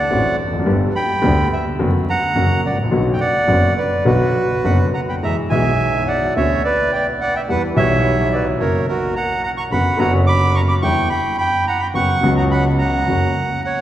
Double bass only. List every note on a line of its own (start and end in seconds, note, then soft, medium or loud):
0.12 0.35 A1 medium
0.40 0.67 F1 medium
0.68 0.91 G1 medium
1.24 1.47 D2 medium
1.80 2.03 F#1 medium
2.36 2.59 F#1 medium
2.64 2.92 A1 soft
2.92 3.16 B1 medium
3.49 3.73 F#1 medium
4.06 4.30 B1 medium
4.65 4.89 F#1 medium
5.22 5.46 E2 medium
5.50 6.31 B1 medium
6.36 6.59 D2 medium
7.48 7.71 E2 medium
7.76 8.55 B1 loud
8.60 8.83 F#1 medium
9.71 9.94 F#1 medium
9.99 10.79 F#1 loud
10.83 11.06 E2 medium
11.94 12.18 F#1 medium
12.23 13.03 C#2 loud
13.07 13.31 F#1 medium